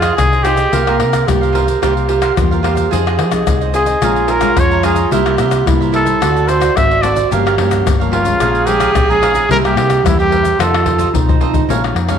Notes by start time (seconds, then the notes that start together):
Already playing: F3 F4 G#4
0.02 F4 G#4 C5 D#5, pandeiro, tamborim, shaker, surdo
0.17 C2 C3 C4 D#4 G#4, pandeiro, tamborim, shaker, surdo
0.32 G#4 C5 D#5, pandeiro, shaker
0.43 C4 D#4 F4 G4 G#4 C5 D#5, pandeiro, tamborim, shaker
0.56 G#4 C5 D#5, pandeiro, shaker
0.72 C2 C3 A#3 F4 G4 A#4 C5 F5, pandeiro, shaker, surdo
0.87 A#3 F4 G4 A#4 C5 F5, pandeiro, tamborim, shaker
0.98 C3 F4 A#4 C5 F5, pandeiro, tamborim
1.13 pandeiro, tamborim, shaker, surdo
1.28 C2 G2 A#3 F4 G4, pandeiro, tamborim, shaker, surdo
1.41 A#4 C5 F5, pandeiro, shaker
1.53 F4 A#4 C5 F5, pandeiro, surdo
1.66 A#4 C5 F5, pandeiro, shaker, surdo
1.82 C2 C3 A#3 F4 G4 A#4 C5 F5, pandeiro, tamborim, shaker, surdo
1.97 pandeiro, shaker
2.08 F4 G4 A#4 C5 F5, pandeiro
2.21 F4 A#4 C5 F5, pandeiro, tamborim, shaker, surdo
2.36 E2 G2 A#3 F4 G4, pandeiro, tamborim, shaker, surdo
2.51 A#3 F4 G4 A#4 C5 F5, pandeiro, shaker
2.62 A#3 F4 G4 A#4 C5 F5, pandeiro, tamborim, surdo
2.75 A#4 C5 F5, pandeiro, shaker
2.91 F2 F3 C4 D#4 F4 G#4 C5 D#5, pandeiro, shaker, surdo
3.06 F4 G#4 C5 D#5, pandeiro, tamborim, shaker
3.18 F3 F4 G#4 C5 D#5, pandeiro, tamborim
3.32 C4 D#4 G#4, pandeiro, tamborim, shaker, surdo
3.47 C2 C3, pandeiro, tamborim, shaker, surdo
3.61 G#4 C5 D#5, pandeiro, shaker
3.73 C4 D#4 F4 G#4 C5 D#5, pandeiro, shaker, surdo
3.86 G#4 C5 D#5, pandeiro, shaker, surdo
4.01 A#1 A#2 G#3 C#4 F4 G#4 C#5 F5 A#5, pandeiro, tamborim, shaker, surdo
4.16 pandeiro, shaker
4.28 G#4 A#4 C#5 F5 A#5, pandeiro, shaker
4.41 G#3 C#4 F4 G#4 C#5 F5 A#5, pandeiro, tamborim, shaker, surdo
4.57 F2 F3 C#5, pandeiro, tamborim, shaker, surdo
4.71 C#5 F5 A#5, pandeiro, shaker
4.83 G#3 C#4 F4 G#4 C#5 F5 A#5, pandeiro, tamborim, shaker, surdo
4.96 C#5 F5 A#5, pandeiro, shaker
5.11 C2 C3 G3 A#3 E4 G4 A#4 C5 E5, pandeiro, shaker, surdo
5.25 G3 A#3 E4 A#4 C5 E5, pandeiro, tamborim, shaker
5.37 C3 E4 A#4 C5 E5, pandeiro, tamborim, shaker
5.51 pandeiro, tamborim, shaker, surdo
5.66 C2 G2 G3 A#3 E4, pandeiro, tamborim, shaker, surdo
5.81 A#4 C5 E5, pandeiro, shaker
5.92 E4 A4 A#4 C5 E5, pandeiro, surdo
6.05 A#4 C5 E5, pandeiro, shaker, surdo
6.21 D2 D3 A3 C4 F#4 A4 C5 D5, pandeiro, tamborim, shaker, surdo
6.37 pandeiro, shaker
6.47 F#4 A4 C5 D5, pandeiro, shaker
6.60 F#4 A4 C5 D5, pandeiro, tamborim, shaker, surdo
6.76 G#1 A3 C4 F#4 E5, pandeiro, tamborim, shaker, surdo
6.91 A4 C5 D5, pandeiro, shaker
7.02 A3 C4 F#4 A4 C5 D5, pandeiro, tamborim, shaker
7.16 A4 C5 D5, pandeiro, shaker
7.31 G1 G2 F3 A#3 C#4 G4 A#4 C#5 F5, pandeiro, shaker, surdo
7.46 G4 A#4 C#5 F5, pandeiro, tamborim, shaker
7.58 G2 F3 A#3 C#4 G4 A#4 C#5 F5, pandeiro, tamborim
7.71 pandeiro, tamborim, shaker, surdo
7.86 G1 G2, pandeiro, tamborim, shaker, surdo
8.00 F3 A#3 C#4 A#4 C#5 F5, pandeiro, shaker
8.12 F4 G4 A#4 C#5 F5, pandeiro, surdo
8.24 F3 G#3 C#4 A#4 C#5 F5, pandeiro, shaker, surdo
8.40 A#1 A#2 G#4 C#5 F5 A#5, pandeiro, tamborim, shaker, surdo
8.55 pandeiro, shaker
8.66 F3 G#3 C#4 G4 G#4 C#5 F5 A#5, pandeiro, shaker
8.80 G#4 C#5 F5 A#5, pandeiro, tamborim, shaker, surdo
8.95 A#1 F2, pandeiro, tamborim, shaker, surdo
9.10 F3 G#3 C#4 G#4 C#5 F5 A#5, pandeiro, shaker
9.21 G#4 C#5 F5 A#5, pandeiro, tamborim, shaker, surdo
9.34 C#5 F5 A#5, pandeiro, shaker
9.49 C2 C3 G3 A#3 E4 G4 A#4 C5 E5, pandeiro, shaker, surdo
9.64 G3 A#3 E4 G4 A#4 C5 E5, pandeiro, tamborim, shaker
9.75 C3 E4 A#4 C5 E5, pandeiro, tamborim
9.90 pandeiro, tamborim, shaker, surdo
10.04 E2 G2 G3 A#3 E4, pandeiro, tamborim, shaker, surdo
10.19 G4 A#4 C5 E5, pandeiro, shaker
10.31 E4 A#4 C5 E5, pandeiro, surdo
10.43 A#4 C5 E5, pandeiro, shaker, surdo
10.59 F2 D#3 A3 C4 F4 A4 C5 D#5, pandeiro, tamborim, shaker, surdo
10.74 pandeiro, tamborim, shaker
10.86 F4 A4 C5 D#5, surdo, pandeiro
10.98 F4 A4 C5 D#5, pandeiro, shaker, surdo
11.14 B1 D#3 A3 C4 D#4, pandeiro, shaker, surdo
11.28 A4 C5 D#5, pandeiro, shaker, surdo
11.40 D#3 A3 C4 F4 A4 C5 D#5, pandeiro
11.54 A4 C5 D#5, pandeiro, shaker, surdo
11.69 A#1 A#2 F3 G#3 C#4 A#4 C#5 F5 G#5, pandeiro, shaker, surdo
11.84 C#5 F5 G#5, pandeiro, tamborim, shaker
11.95 F2, muted cavaquinho stroke, pandeiro, tamborim
12.08 F3 G#3 C#4 C#5 F5 G#5, pandeiro, tamborim, shaker, surdo